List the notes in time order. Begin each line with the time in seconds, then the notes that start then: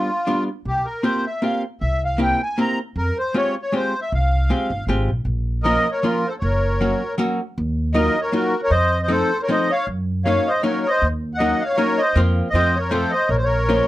Already playing: F4
0.27 G3 B3 D4 F4
0.65 C2 G4
0.85 A#4
1.03 A#3 C4 F4 G4 C5
1.26 E5
1.42 A#3 C4 F4 G4 F5
1.81 C2 E5
2.05 F5
2.18 A#3 C4 E4 G4 G5
2.43 G#5
2.58 A#3 C4 E4 G4 A#5
2.96 F2 A#4
3.18 C5
3.34 G#3 C4 F4 G4 C#5
3.62 C#5
3.72 G#3 C4 F4 G4 C5
4.02 E5
4.12 C2 F5
4.50 G#3 C4 F4 G4
4.70 G1
4.87 G#1 G#3 C4 F4 G4
5.08 A#1
5.25 A#1
5.63 F3 A#3 C#4 F4 A#4 D#5
5.91 A#4 C#5
6.02 F3 A#3 C#4 F4 A#4
6.28 A4 C5
6.39 F#1 C#5
6.44 A#4
6.81 F#3 A#3 C#4 F#4
7.18 F#3 A#3 C#4 F#4
7.58 D#2
7.94 F#3 A#3 D#4 F4 A#4 D#5
8.21 A#4 C#5
8.32 F#3 A#3 D#4 F4 F#4 A#4
8.63 A#4 C#5
8.70 F2 C5 D#5
9.03 C5 D#5
9.08 F3 A3 C4 D#4 A4 C5
9.42 A#4 C#5
9.49 F3 A3 C4 D#4 C5 D#5
9.70 C#5 F5
9.87 F#2
10.25 F#3 A#3 C#4 D#4 C#5 F5
10.47 C5 D#5
10.63 F#3 A#3 C#4 D#4 A#4 C#5
10.86 C5 D#5
11.02 D#2
11.34 F#5
11.38 F#3 A#3 C#4 D#4 D#5
11.61 F5
11.65 C#5
11.73 A#4 C#5
11.78 F#3 A#3 C#4 D#4
11.98 D#5
12.02 C5
12.15 F2 F3 A#3 C4 F4
12.50 F2 D#5
12.54 F3 A3 C4 F4 C5
12.76 A#4 C#5
12.89 F3 A3 C4 F4 A4 C5
13.11 C5 D#5
13.29 A#1 A#4 C#5
13.37 C5
13.44 A#4 C#5
13.69 F3 A#3 C#4 F4